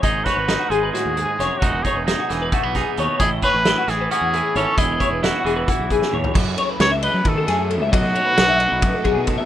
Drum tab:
CC |--------------|--------------|--------------|--------------|
RD |--------------|--------------|--------------|--------------|
HH |x-x-x-x-x-x-x-|x-x-x-x-x-x-x-|x-x-x-x-x-x-x-|x-x-x-x-x-x---|
SD |--o-o---o---o-|----o-o---o---|----o-o-------|----o------o--|
T2 |--------------|--------------|--------------|------------o-|
FT |--------------|--------------|--------------|-------------o|
BD |o-o-----------|o-o-----o-o---|o-o-----------|o-o-----o-o---|

CC |x-------------|--------------|
RD |--x-x-x-x-x-x-|x-x-x-x-x-x-x-|
HH |--------------|--------------|
SD |----o-----o---|----o---------|
T2 |--------------|--------------|
FT |--------------|--------------|
BD |o-------o-----|o-------o-o-o-|